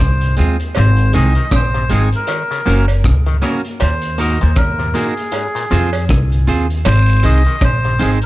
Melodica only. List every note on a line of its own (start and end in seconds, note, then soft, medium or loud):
0.00 0.35 C5 medium
0.78 1.12 C5 loud
1.17 1.51 D#5 loud
1.55 1.93 C5 loud
1.93 2.03 G#4 medium
2.16 2.86 A#4 medium
3.82 4.21 C5 medium
4.20 4.43 D#5 medium
4.42 4.56 C5 medium
4.57 4.96 A#4 medium
4.93 6.05 G#4 medium
6.86 7.25 C5 loud
7.25 7.63 D#5 loud
7.64 8.02 C5 loud
8.01 8.11 G#4 medium